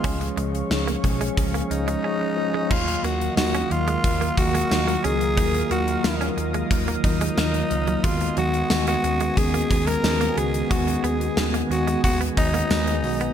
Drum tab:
CC |----------------|x---------------|----------------|----------------|
HH |xxxx-xxxxxxx----|-xxx-xxxxxxx-xxx|xxxx-xxxxxxx-xxx|xxxx-xxxxxxx-xxx|
TB |----------------|----x-------x---|----x-------x---|----x-------x---|
SD |----o-----------|----o-------o---|----o-------o---|----o-------o---|
BD |o-----o-o-------|o-------o-o-----|o-------o-o-----|o-------o-o-----|

CC |----------------|
HH |xxxx-xxxxxxx-xox|
TB |----x-------x---|
SD |----o-------o---|
BD |o-------o-o-----|